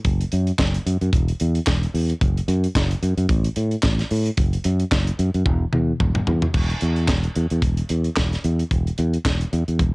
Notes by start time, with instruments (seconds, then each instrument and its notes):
0.05 fingered electric bass F#1, kick, closed hi-hat
0.21 closed hi-hat
0.32 fingered electric bass F#2, closed hi-hat
0.47 closed hi-hat
0.59 fingered electric bass F#1, kick, snare, clap
0.74 closed hi-hat
0.86 fingered electric bass F#2, closed hi-hat
1.01 fingered electric bass F#2, closed hi-hat
1.13 fingered electric bass E1, kick, closed hi-hat
1.28 closed hi-hat
1.40 fingered electric bass E2, closed hi-hat
1.55 closed hi-hat
1.67 fingered electric bass E1, kick, snare, clap
1.83 closed hi-hat
1.94 fingered electric bass E2, open hi-hat
2.10 closed hi-hat
2.21 fingered electric bass F#1, kick, closed hi-hat
2.38 closed hi-hat
2.48 fingered electric bass F#2, closed hi-hat
2.64 closed hi-hat
2.75 fingered electric bass F#1, kick, snare, clap
2.91 closed hi-hat
3.03 fingered electric bass F#2, closed hi-hat
3.18 fingered electric bass F#2, closed hi-hat
3.29 fingered electric bass A1, kick, closed hi-hat
3.44 closed hi-hat
3.56 fingered electric bass A2, closed hi-hat
3.71 closed hi-hat
3.83 fingered electric bass A1, kick, snare, clap
3.99 snare, closed hi-hat
4.11 fingered electric bass A2, open hi-hat
4.26 closed hi-hat
4.37 fingered electric bass F#1, kick, closed hi-hat
4.53 closed hi-hat
4.64 fingered electric bass F#2, closed hi-hat
4.79 closed hi-hat
4.91 fingered electric bass F#1, kick, snare, clap
5.07 closed hi-hat
5.19 fingered electric bass F#2, closed hi-hat
5.34 fingered electric bass F#2, closed hi-hat
5.46 fingered electric bass E1, kick, high tom
5.73 fingered electric bass E2, mid tom
6.00 fingered electric bass E1, kick, mid tom
6.15 mid tom
6.27 fingered electric bass E2, floor tom
6.42 floor tom
6.54 fingered electric bass E1, kick, crash
6.70 closed hi-hat
6.81 fingered electric bass E2, closed hi-hat
6.96 closed hi-hat
7.08 fingered electric bass E1, kick, snare, clap
7.23 closed hi-hat
7.35 fingered electric bass E2, closed hi-hat
7.50 fingered electric bass E2, closed hi-hat
7.62 fingered electric bass E1, kick, closed hi-hat
7.77 closed hi-hat
7.89 fingered electric bass E2, closed hi-hat
8.04 closed hi-hat
8.16 fingered electric bass E1, kick, snare, clap
8.33 snare, closed hi-hat
8.44 fingered electric bass E2, closed hi-hat
8.59 closed hi-hat
8.71 fingered electric bass E1, kick, closed hi-hat
8.87 closed hi-hat
8.98 fingered electric bass E2, closed hi-hat
9.13 closed hi-hat
9.25 fingered electric bass E1, kick, snare, clap
9.41 closed hi-hat
9.53 fingered electric bass E2, closed hi-hat
9.68 fingered electric bass E2, closed hi-hat
9.79 fingered electric bass E1, kick, closed hi-hat